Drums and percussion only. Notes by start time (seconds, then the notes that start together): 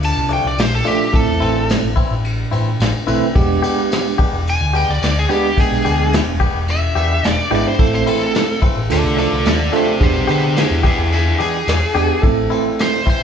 0.03 ride
0.30 ride
0.58 snare, ride
0.86 ride
1.14 kick, ride
1.42 ride
1.69 snare, ride
1.97 kick, ride
2.24 ride
2.52 ride
2.80 snare, ride
3.08 ride
3.35 kick, ride
3.63 ride
3.91 snare, ride
4.19 kick, ride
4.47 ride
4.75 ride
5.02 snare, ride
5.30 ride
5.57 kick, ride
5.85 ride
6.13 snare, ride
6.41 kick, ride
6.68 ride
6.96 ride
7.24 snare, ride
7.51 ride
7.79 kick, ride
8.07 ride
8.34 snare, ride
8.62 kick, ride
8.90 ride
9.18 ride
9.45 snare, ride
9.73 ride
10.01 kick, ride
10.28 ride
10.56 snare, ride
10.84 kick, ride
11.12 ride
11.40 ride
11.67 snare, ride
11.96 ride
12.23 kick, ride
12.51 ride
12.79 snare, ride
13.07 kick, ride